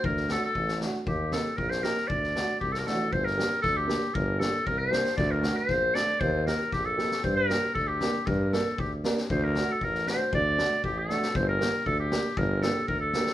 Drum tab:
SD |-oo--oo-|--o--ooo|-oo--oo-|-oo-o-o-|
BD |o---o---|o---o---|o---o---|o---o---|

SD |--o---oo|o-o-o-o-|--o-o-oo|--o---o-|
BD |o---o---|o---o---|o---o---|o---o---|

SD |--o---oo|--o--oo-|--o---oo|--o---o-|
BD |o---o---|o---o---|o---o---|o---o---|

SD |--o---oo|
BD |o---o---|